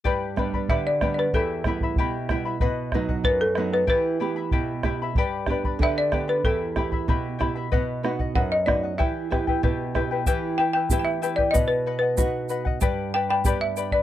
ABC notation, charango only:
X:1
M:2/4
L:1/16
Q:1/4=94
K:Em
V:1 name="Charango"
[GBdgb]2 [Bdgb] [Bdb] [GBdgb]2 [Bdgb] [Bdb] | [EGegb]2 [Eegb] [Eeb] [EGegb]2 [Eegb] [Eeb] | [B^df]2 [Bdf] [df] [Bdf]2 [Bdf] [df] | [EGegb]2 [Eegb] [Eeb] [EGegb]2 [Eegb] [Eeb] |
[GBdgb]2 [Bdgb] [Bdb] [GBdgb]2 [Bdgb] [Bdb] | [EGegb]2 [Eegb] [Eeb] [EGegb]2 [Eegb] [Eeb] | [B^df]2 [Bdf] [df] [Bdf]2 [Bdf] [df] | [EGBeg]2 [EBeg] [EBg] [EGBeg]2 [EBeg] [EBg] |
[EGBeg]2 [EBeg] [EBg] [EGBeg]2 [EBeg] [EBg] | [B^df]2 [Bdf] [df] [Bdf]2 [Bdf] [df] | [GBdgb]2 [Bdgb] [Bdb] [GBdgb]2 [Bdgb] [Bdb] |]